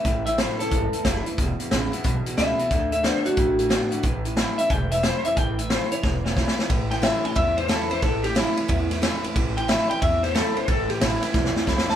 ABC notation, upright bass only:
X:1
M:4/4
L:1/8
Q:"Swing" 1/4=181
K:A
V:1 name="Upright bass" clef=bass
A,,,3 z G,,, z F,,, z | E,,, z A,,, z B,,, z C,, z | D,,3 z A,,,3 z | A,,,3 z E,,,3 z |
A,,,3 z E,,,3 z | A,,,3 z E,,3 z | A,,,3 z E,,3 z | A,,,3 z E,,3 z |
A,,, z A,,, z B,,, z C,, z |]